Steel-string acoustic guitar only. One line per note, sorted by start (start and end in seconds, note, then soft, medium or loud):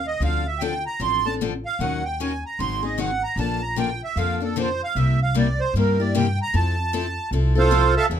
0.22 0.43 D3 medium
0.22 0.43 F3 medium
0.22 0.43 C4 medium
0.22 0.44 D4 medium
0.22 0.44 A4 medium
0.61 0.73 D3 medium
0.61 0.73 F3 medium
0.61 0.73 C4 medium
0.61 0.73 D4 medium
0.61 0.73 A4 loud
1.00 1.22 D3 medium
1.00 1.22 F3 medium
1.00 1.22 C4 medium
1.00 1.22 D4 medium
1.00 1.22 A4 medium
1.25 1.40 C4 soft
1.25 1.40 D4 soft
1.25 1.40 A4 medium
1.41 1.52 D3 medium
1.41 1.52 F3 medium
1.41 1.52 C4 medium
1.41 1.52 D4 loud
1.41 1.53 A4 medium
1.80 2.01 D#3 medium
1.80 2.02 F#3 medium
1.80 2.02 C#4 medium
1.80 2.02 D#4 medium
1.80 2.02 A#4 medium
2.20 2.31 D#3 medium
2.20 2.31 F#3 medium
2.20 2.31 C#4 medium
2.20 2.31 D#4 medium
2.20 2.31 A#4 medium
2.59 2.80 D#3 medium
2.59 2.81 F#3 medium
2.59 2.81 C4 medium
2.59 2.81 D#4 medium
2.59 2.81 G#4 medium
2.83 2.97 C4 soft
2.83 2.98 D#4 soft
2.83 2.97 G#4 medium
2.98 3.09 D#3 medium
2.98 3.10 F#3 medium
2.98 3.10 C4 medium
2.98 3.10 D#4 medium
2.98 3.10 G#4 loud
3.37 3.59 D3 medium
3.37 3.59 F3 medium
3.37 3.59 A#3 medium
3.37 3.59 D4 medium
3.37 3.59 A4 medium
3.76 3.88 D3 medium
3.76 3.88 F3 medium
3.76 3.89 A#3 medium
3.76 3.89 D4 medium
3.76 3.89 A4 medium
4.17 4.38 D3 medium
4.17 4.38 F3 medium
4.17 4.38 A#3 medium
4.17 4.38 D4 medium
4.17 4.39 A4 medium
4.40 4.55 A#3 soft
4.40 4.56 D4 medium
4.40 4.55 A4 soft
4.56 4.67 D3 medium
4.56 4.68 F3 medium
4.56 4.67 A#3 medium
4.56 4.68 D4 medium
4.56 4.68 A4 loud
4.96 5.17 C3 medium
4.96 5.17 G3 medium
4.96 5.17 A#3 medium
4.96 5.18 E4 medium
4.96 5.18 G4 medium
5.35 5.46 C3 loud
5.35 5.46 G3 loud
5.35 5.47 A#3 medium
5.35 5.47 E4 medium
5.35 5.46 G4 loud
5.76 5.96 C3 medium
5.76 5.96 G3 medium
5.76 5.97 A#3 medium
5.76 5.97 E4 medium
5.76 5.97 G4 medium
6.00 6.13 A#3 soft
6.00 6.14 E4 medium
6.00 6.14 G4 medium
6.15 6.26 C3 medium
6.15 6.26 G3 medium
6.15 6.26 A#3 loud
6.15 6.26 E4 loud
6.15 6.26 G4 loud
6.54 6.75 F3 medium
6.54 6.75 C4 medium
6.54 6.75 E4 medium
6.54 6.75 A4 medium
6.93 7.04 F3 medium
6.93 7.05 C4 loud
6.93 7.05 E4 loud
6.93 7.05 A4 loud
7.33 7.54 F3 medium
7.33 7.54 C4 medium
7.33 7.54 E4 medium
7.33 7.54 A4 medium
7.55 7.70 C4 soft
7.55 7.71 E4 soft
7.55 7.71 A4 medium
7.71 7.83 F3 loud
7.71 7.83 C4 medium
7.71 7.83 E4 loud
7.71 7.83 A4 loud
8.11 8.20 E3 medium
8.11 8.20 B3 medium
8.11 8.20 D4 medium
8.11 8.20 G#4 medium